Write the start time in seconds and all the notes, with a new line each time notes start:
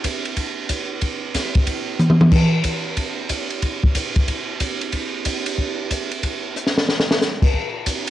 0.04 kick, hi-hat pedal, ride
0.25 ride
0.36 kick, ride
0.69 kick, hi-hat pedal, ride
1.01 kick, ride
1.34 kick, snare, hi-hat pedal, ride
1.55 kick, ride
1.66 kick, ride
1.99 hi-hat pedal, mid tom
2.10 mid tom
2.21 mid tom
2.32 kick, crash
2.64 kick, hi-hat pedal, ride
2.97 kick, ride
3.29 kick, hi-hat pedal, ride
3.50 ride
3.62 kick, ride
3.84 kick
3.95 kick, hi-hat pedal, ride
4.16 kick, ride
4.28 kick, ride
4.60 kick, hi-hat pedal, ride
4.81 ride
4.92 kick, ride
5.25 kick, hi-hat pedal, ride
5.46 ride
5.58 kick
5.91 kick, hi-hat pedal, ride
6.12 ride
6.23 kick, ride
6.56 hi-hat pedal
6.67 snare
6.78 snare
6.89 snare
7.00 snare
7.11 snare
7.21 snare, hi-hat pedal
7.42 kick, crash
7.54 kick
7.86 kick, hi-hat pedal, ride